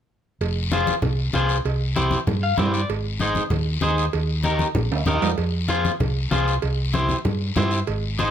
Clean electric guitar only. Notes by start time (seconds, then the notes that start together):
0.73 F4 G#4 C5
1.34 F4 G#4 C5
1.96 E4 G4 C5
2.43 F5
2.57 E4 G4 C5 E5
2.74 D5
3.21 D#4 G#4 C5
3.82 D#4 G#4 C5
4.44 D#4 G4 A#4
5.07 D#4 G4 A#4
5.68 F4 G#4 C5
6.31 F4 G#4 C5
6.94 E4 G4 C5
7.57 E4 G4 C5
8.19 D#4 G#4 C5